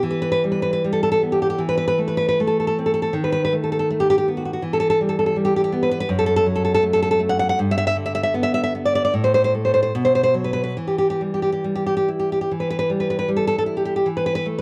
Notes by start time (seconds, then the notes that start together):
0.03 E3
0.10 B4
0.22 B4
0.32 B4
0.44 G3
0.52 B4
0.62 B4
0.73 B4
0.84 G3
0.93 A4
1.03 A4
1.12 A4
1.23 B3
1.32 G4
1.42 G4
1.50 G4
1.58 E3
1.69 B4
1.78 B4
1.88 B4
1.98 A3
2.08 B4
2.17 B4
2.28 B4
2.40 A3
2.47 A4
2.59 A4
2.67 A4
2.78 C4
2.86 A4
2.94 A4
3.02 A4
3.13 D#3
3.24 B4
3.32 B4
3.45 B4
3.53 A3
3.64 A4
3.72 A4
3.79 A4
3.90 A3
4.00 G4
4.10 G4
4.18 G4
4.28 B3
4.37 F#4
4.45 F#4
4.53 F#4
4.62 E3
4.73 A4
4.80 A4
4.90 A4
5.01 G3
5.09 A4
5.19 A4
5.26 A4
5.36 G3
5.45 G4
5.56 G4
5.64 G4
5.72 B3
5.83 B4
5.91 B4
6.00 B4
6.09 F#2
6.19 A4
6.26 A4
6.36 A4
6.46 F#3
6.56 A4
6.65 A4
6.75 A4
6.83 A3
6.93 A4
7.03 A4
7.11 A4
7.19 A3
7.29 F#5
7.39 F#5
7.49 F#5
7.59 G2
7.71 E5
7.78 E5
7.87 E5
7.96 D3
8.06 E5
8.15 E5
8.23 E5
8.34 B3
8.43 E5
8.54 E5
8.64 E5
8.75 B3
8.86 D5
8.95 D5
9.05 D5
9.14 A2
9.24 C5
9.34 C5
9.44 C5
9.54 A3
9.65 C5
9.74 C5
9.83 C5
9.95 B2
10.05 C5
10.15 C5
10.23 C5
10.34 F#3
10.44 B4
10.53 B4
10.64 B4
10.77 E3
10.88 G4
10.99 G4
11.10 G4
11.21 G3
11.34 G4
11.42 G4
11.53 G4
11.64 G3
11.76 G4
11.86 G4
11.97 G4
12.08 E4
12.19 G4
12.32 G4
12.41 G4
12.51 E3
12.60 B4
12.71 B4
12.79 B4
12.90 G3
13.00 B4
13.10 B4
13.19 B4
13.28 G3
13.36 A4
13.47 A4
13.58 A4
13.66 E4
13.77 G4
13.85 G4
13.96 G4
14.06 E3
14.17 B4
14.26 B4
14.35 B4
14.46 A3
14.58 B4